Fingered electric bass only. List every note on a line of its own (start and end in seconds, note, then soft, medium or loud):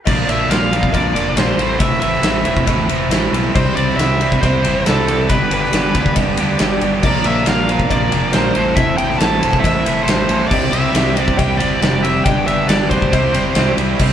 0.07 0.27 A#1 medium
0.28 0.48 A#1 medium
0.49 0.91 A#1 medium
0.94 1.14 A#1 medium
1.14 1.35 F1 medium
1.35 1.57 A#1 medium
1.58 1.79 A1 medium
1.80 2.00 E1 medium
2.01 2.21 A1 medium
2.22 2.43 A1 medium
2.44 2.66 E1 medium
2.67 2.87 A1 medium
2.87 3.09 E1 medium
3.09 3.31 A1 medium
3.32 3.54 B1 medium
3.55 3.76 C2 medium
3.76 3.97 C2 medium
3.97 4.40 C2 medium
4.43 4.64 C2 medium
4.65 4.85 G1 medium
4.86 5.28 C2 medium
5.29 5.50 G1 medium
5.50 5.72 G1 medium
5.73 5.94 G1 medium
5.95 6.16 D2 medium
6.16 6.37 G1 medium
6.38 6.59 D2 medium
6.60 6.81 G1 medium
6.82 7.02 G1 medium
7.03 7.24 A#1 medium
7.25 7.46 A#1 medium
7.48 7.90 A#1 medium
7.90 8.12 A#1 medium
8.12 8.33 F1 medium
8.34 8.55 A#1 medium
8.56 8.76 A1 medium
8.76 8.98 E1 medium
8.99 9.20 A1 medium
9.21 9.42 A1 medium
9.42 9.64 E1 medium
9.64 9.84 A1 medium
9.85 10.06 E1 medium
10.06 10.28 A1 loud
10.29 10.50 A1 medium
10.50 10.71 C2 medium
10.72 10.93 C2 medium
10.94 11.36 C2 medium
11.39 11.60 C2 medium
11.61 11.81 G1 medium
11.82 12.24 F1 medium
12.25 12.46 G1 medium
12.47 12.68 G1 medium
12.69 12.90 G1 medium
12.91 13.12 D2 medium
13.13 13.33 C2 medium
13.36 13.56 G1 medium
13.56 13.77 C2 medium
13.77 13.98 C2 medium
14.00 14.13 C2 medium